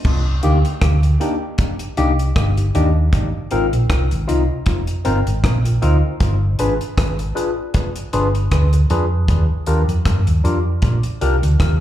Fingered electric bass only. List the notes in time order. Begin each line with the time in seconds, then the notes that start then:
0.05 C2
0.44 D2
0.82 D2
1.98 C2
2.36 G1
2.75 D#2
3.13 G#1
3.52 G#1
3.73 A#1
3.90 C2
4.12 G#1
4.29 C2
4.67 F1
5.06 G1
5.27 G#1
5.44 A#1
5.83 D2
6.21 G1
6.60 G#1
6.98 G#1
8.14 G1
8.52 D2
8.90 F2
9.29 D#2
9.68 D#2
9.88 F2
10.06 G2
10.27 D#2
10.44 F2
10.83 A#1
11.22 C2
11.42 D2
11.60 D#2